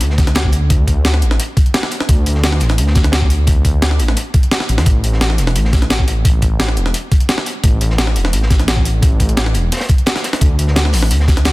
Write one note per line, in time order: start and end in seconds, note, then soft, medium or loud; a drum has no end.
0.00 0.69 D2 loud
0.00 closed hi-hat medium
0.00 closed hi-hat loud
0.10 snare soft
0.18 kick loud
0.18 snare soft
0.18 closed hi-hat medium
0.27 snare medium
0.27 closed hi-hat soft
0.35 snare loud
0.35 closed hi-hat medium
0.35 closed hi-hat loud
0.44 kick medium
0.52 closed hi-hat medium
0.70 0.86 D2 loud
0.70 kick loud
0.70 closed hi-hat loud
0.70 closed hi-hat medium
0.87 1.24 D2 loud
0.87 kick medium
0.87 closed hi-hat medium
1.05 snare loud
1.05 closed hi-hat medium
1.14 snare soft
1.22 1.38 A1 medium
1.22 closed hi-hat medium
1.31 snare medium
1.40 closed hi-hat medium
1.57 kick loud
1.57 closed hi-hat medium
1.66 closed hi-hat soft
1.74 snare loud
1.74 closed hi-hat loud
1.83 snare soft
1.83 snare medium
1.92 closed hi-hat medium
2.00 snare medium
2.09 2.25 D2 loud
2.09 kick loud
2.09 closed hi-hat medium
2.26 2.62 D2 loud
2.26 closed hi-hat medium
2.35 snare soft
2.43 snare loud
2.43 closed hi-hat loud
2.43 closed hi-hat medium
2.52 snare soft
2.60 2.80 A1 medium
2.60 snare soft
2.60 closed hi-hat medium
2.69 snare medium
2.69 closed hi-hat soft
2.78 3.46 D2 loud
2.78 closed hi-hat medium
2.87 snare soft
2.95 kick loud
2.95 snare soft
2.95 closed hi-hat medium
3.04 snare soft
3.04 closed hi-hat soft
3.12 snare loud
3.12 closed hi-hat medium
3.22 kick medium
3.30 closed hi-hat medium
3.47 3.63 D2 loud
3.47 kick loud
3.47 closed hi-hat loud
3.47 closed hi-hat medium
3.65 4.01 D2 loud
3.65 kick medium
3.65 closed hi-hat medium
3.82 snare loud
3.82 closed hi-hat medium
3.91 snare soft
3.99 4.15 A1 medium
3.99 closed hi-hat medium
4.08 snare soft
4.17 closed hi-hat medium
4.34 kick loud
4.34 closed hi-hat medium
4.43 closed hi-hat soft
4.51 snare loud
4.51 closed hi-hat medium
4.60 snare soft
4.60 snare medium
4.69 4.79 A1 medium
4.69 closed hi-hat medium
4.78 4.86 F2 medium
4.78 snare loud
4.78 snare medium
4.78 closed hi-hat medium
4.86 5.02 A1 loud
4.86 kick loud
4.86 closed hi-hat medium
5.04 5.40 A1 loud
5.04 closed hi-hat medium
5.13 snare soft
5.21 snare loud
5.21 closed hi-hat medium
5.30 snare soft
5.38 5.57 E1 medium
5.38 snare soft
5.38 closed hi-hat medium
5.47 snare soft
5.47 closed hi-hat soft
5.56 6.24 A1 loud
5.56 closed hi-hat medium
5.65 snare soft
5.73 kick loud
5.73 snare soft
5.73 closed hi-hat medium
5.82 snare soft
5.82 closed hi-hat soft
5.90 snare loud
5.90 closed hi-hat medium
5.99 kick medium
6.08 closed hi-hat medium
6.25 6.41 A1 loud
6.25 kick loud
6.25 closed hi-hat medium
6.42 6.79 A1 loud
6.42 kick medium
6.42 closed hi-hat medium
6.60 snare loud
6.60 closed hi-hat medium
6.68 snare soft
6.77 6.93 E1 medium
6.77 closed hi-hat medium
6.86 snare soft
6.94 closed hi-hat medium
7.12 kick loud
7.12 closed hi-hat medium
7.20 closed hi-hat soft
7.29 snare loud
7.29 closed hi-hat medium
7.38 snare soft
7.38 snare medium
7.46 closed hi-hat medium
7.64 7.79 A1 loud
7.64 kick loud
7.64 closed hi-hat loud
7.64 closed hi-hat medium
7.81 8.17 A1 loud
7.81 closed hi-hat medium
7.90 snare soft
7.98 snare loud
7.98 closed hi-hat loud
7.98 closed hi-hat medium
8.07 snare soft
8.16 8.35 E1 medium
8.16 closed hi-hat medium
8.24 snare soft
8.33 9.01 A1 loud
8.33 closed hi-hat medium
8.42 snare soft
8.50 kick loud
8.50 snare soft
8.50 closed hi-hat medium
8.60 snare soft
8.60 closed hi-hat soft
8.68 snare loud
8.68 closed hi-hat loud
8.68 closed hi-hat medium
8.77 kick medium
8.85 closed hi-hat medium
9.02 9.18 A1 loud
9.02 kick loud
9.02 closed hi-hat medium
9.02 closed hi-hat loud
9.20 9.56 A1 loud
9.20 kick medium
9.20 closed hi-hat medium
9.29 closed hi-hat soft
9.37 snare loud
9.37 closed hi-hat medium
9.37 closed hi-hat loud
9.46 snare soft
9.54 9.70 E1 medium
9.54 closed hi-hat medium
9.72 snare medium
9.72 closed hi-hat loud
9.72 closed hi-hat medium
9.77 snare medium
9.77 closed hi-hat medium
9.80 snare loud
9.80 closed hi-hat medium
9.89 kick loud
9.89 closed hi-hat medium
9.98 closed hi-hat soft
10.06 snare loud
10.06 closed hi-hat medium
10.06 closed hi-hat loud
10.15 snare soft
10.15 snare loud
10.15 snare medium
10.15 closed hi-hat medium
10.24 snare loud
10.24 closed hi-hat medium
10.33 snare loud
10.33 snare medium
10.33 closed hi-hat medium
10.33 closed hi-hat soft
10.41 10.57 D2 loud
10.41 kick loud
10.41 closed hi-hat loud
10.41 closed hi-hat medium
10.59 10.95 D2 loud
10.59 closed hi-hat medium
10.67 snare soft
10.76 snare loud
10.76 closed hi-hat loud
10.76 closed hi-hat medium
10.85 snare soft
10.93 11.12 A1 medium
10.93 snare soft
10.93 closed hi-hat medium
10.93 open hi-hat medium
11.02 snare medium
11.02 closed hi-hat soft
11.11 11.53 D2 loud
11.11 closed hi-hat loud
11.11 closed hi-hat medium
11.20 snare soft
11.28 kick loud
11.28 snare soft
11.28 closed hi-hat medium
11.37 snare medium
11.37 closed hi-hat soft
11.45 snare loud
11.45 closed hi-hat medium
11.45 closed hi-hat loud